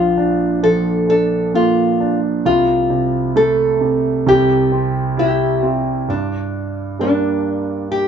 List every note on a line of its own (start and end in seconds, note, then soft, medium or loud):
0.00 2.41 A#1 medium
0.00 1.53 A#2 medium
0.00 0.62 F3 medium
0.00 0.16 D4 medium
0.00 0.63 F4 medium
0.17 1.07 D4 medium
0.63 2.41 F3 medium
0.63 1.09 A4 loud
1.09 1.99 D4 medium
1.09 1.55 A4 medium
1.54 2.42 A#2 medium
1.54 2.19 F4 medium
2.00 2.44 D4 medium
2.45 4.23 C2 medium
2.45 2.89 C3 medium
2.45 3.36 F4 medium
2.90 3.79 C3 medium
3.36 4.24 A3 medium
3.36 4.28 A4 medium
3.81 4.25 C3 medium
4.27 6.04 C2 medium
4.27 6.04 C3 medium
4.27 5.18 G4 loud
4.72 5.61 C4 medium
5.17 6.05 E4 medium
5.17 6.09 E4 medium
5.17 5.66 G4 medium
5.62 6.07 C4 medium
5.62 5.82 F4 medium
6.08 8.08 G2 medium
6.08 7.00 D4 medium
6.99 7.87 G3 soft
6.99 7.88 A#3 soft
6.99 7.88 D4 soft
6.99 7.87 D4 medium
7.92 8.08 G4 loud